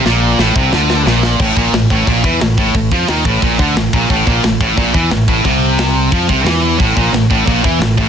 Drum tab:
CC |--------|x-------|--------|--------|
HH |--------|--o-o-o-|o-o-o-o-|o-o-o-o-|
SD |o-o-oooo|--o---o-|--o---o-|--o---o-|
BD |---o----|oo-ooo-o|oo-ooo-o|oo-ooo-o|

CC |--------|--------|
HH |o-o-o-o-|o-o-o-o-|
SD |--o---o-|--o---o-|
BD |o---oo--|oo-ooo-o|